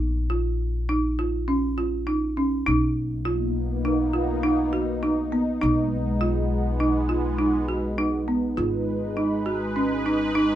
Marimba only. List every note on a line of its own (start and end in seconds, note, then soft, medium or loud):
0.30 0.66 F4 medium
0.89 1.07 D#4 medium
1.19 1.37 F4 medium
1.48 1.66 C#4 medium
1.78 1.96 F4 medium
2.07 2.25 D#4 medium
2.37 2.55 C#4 medium
2.67 3.02 D#4 medium
3.25 3.61 F4 medium
3.85 4.03 D#4 medium
4.13 4.32 F4 medium
4.43 4.61 D#4 medium
4.73 4.91 F#4 medium
5.03 5.21 D#4 medium
5.32 5.50 B3 medium
5.61 5.97 D#4 medium
6.21 6.57 F4 medium
6.80 6.98 D#4 medium
7.09 7.27 F4 medium
7.39 7.57 D#4 medium
7.68 7.87 F#4 medium
7.98 8.16 D#4 medium
8.28 8.46 B3 medium
8.57 8.93 F4 medium
9.17 9.35 D#4 medium
9.46 9.64 F#4 medium
9.76 9.94 C#4 medium
10.06 10.24 D#4 medium
10.35 10.53 D#4 medium